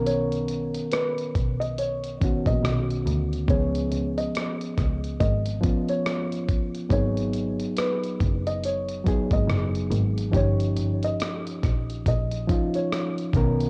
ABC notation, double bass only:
X:1
M:4/4
L:1/16
Q:"Swing 16ths" 1/4=70
K:D#m
V:1 name="Double bass" clef=bass
B,,,3 z3 B,,,4- B,,, A,,, B,,,2 =D,,2 | C,,2 C,, z3 C,,2 G,,,2 z6 | G,,,3 z3 F,,,4- F,,, G,,, F,,,2 G,,,2 | =G,,,2 G,,, z3 A,,,2 A,,,2 z4 B,,,2 |]